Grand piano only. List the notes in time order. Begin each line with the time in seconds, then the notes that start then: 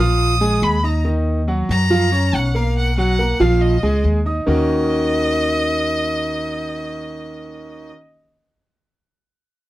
Already playing: F3
0.00 F4 F5
0.41 G#3 G#4 G#5
0.83 D#4 D#5 D#6
1.04 D#3 D#4 D#5
1.48 F#3 F#4 F#5
1.90 F3 F4 F5
2.12 C#4 C#5 C#6
2.55 A#3 A#4 A#5
2.98 F#3 F#4 F#5
3.19 A#3 A#4 A#5
3.40 F3 F4 F5
3.83 G#3 G#4 G#5
4.26 D#4 D#5 D#6
4.46 D#3 A#3 C#4 D#4 F#4 A#4